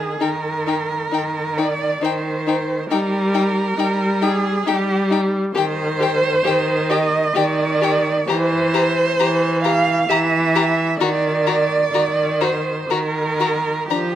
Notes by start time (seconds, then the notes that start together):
Already playing: G#4
0.20 D#3 D#4 A#4 G5
0.67 D#4 G5
1.11 D#3 D#4 G5
1.57 D#4 D5 G5
2.01 D#3 D#4 C5 G5
2.47 D#4 G5
2.90 G3 D#4 A#4 G5
3.33 D#4 G5
3.77 G3 D#4 G5
4.22 D#4 G#4 G5
4.66 G3 D#4 G4 G5
5.10 D#4 G5
5.55 D#3 G4 C5 G5
6.00 G4 G5
6.44 D#3 G4 G5
6.89 G4 D#5 G5
7.35 D#3 G4 D5 G5
7.81 G4 G5
8.28 E3 G4 C5 A#5
8.74 G4 A#5
9.19 E3 G4 A#5
9.64 G4 F5 A#5
10.09 E3 G4 E5 A#5
10.55 G4 A#5
11.00 D#3 F#4 D5 A#5
11.47 F#4 A#5
11.93 D#3 F#4 A#5
12.41 F#4 C5 A#5
12.90 D#3 F#4 A#4 A#5
13.40 F#4 A#5
13.90 F3 D4 G4 A#5